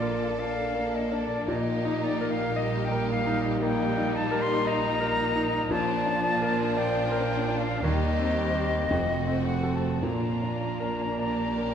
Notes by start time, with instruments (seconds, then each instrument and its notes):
Already playing: double bass section A#1, cello section A#2, grand piano F3 D4 A#4 D5, viola section A#3, violin section F4 A4, flute D5
0.02 grand piano A#4
0.39 viola section A#3, violin section D4, grand piano D5, flute F5
0.75 grand piano A#4
0.95 flute D#5
1.12 grand piano D4
1.22 flute D5
1.48 double bass section A#1, grand piano A#2, cello section A#2, violin section D#4 G4, flute D#5
1.85 grand piano D#4
2.04 flute D5
2.21 grand piano A#4
2.31 flute F5
2.56 viola section G3, violin section D#4, grand piano D#5, flute D#5
2.85 flute G5
2.92 grand piano A#4
3.11 flute F5
3.26 grand piano D#4
3.62 grand piano A#3, violin section D#4, flute G5
3.97 grand piano D#4
4.16 flute A5
4.31 grand piano A#4
4.42 flute C6
4.67 grand piano D#5, flute A#5
5.00 grand piano A#4
5.36 grand piano D#4
5.71 double bass section A#1, grand piano A#2, cello section A#2, viola section F3, violin section D4 F4, flute A5
6.06 grand piano D4
6.24 violin section D4
6.42 grand piano A#4
6.77 grand piano D5, flute G5
7.12 grand piano A#4
7.48 grand piano D4
7.58 flute F5
7.83 grand piano D#2, double bass section D#2, cello section D#2, viola section G3, violin section D#4 G4, flute D#5
8.19 grand piano C4
8.39 violin section C4
8.55 grand piano G4 C5
8.91 double bass section F1, grand piano F2, cello section F2, viola section A3, violin section C4 F#4
9.27 grand piano C4
9.47 flute F#5
9.63 grand piano F#4 A4
9.75 flute A5
10.03 double bass section A#1, grand piano A#2, cello section A#2, viola section A#3, violin section D4 F4, flute A#5
10.42 grand piano D4
10.80 grand piano A#4
11.19 violin section G4, grand piano D5
11.58 grand piano A#4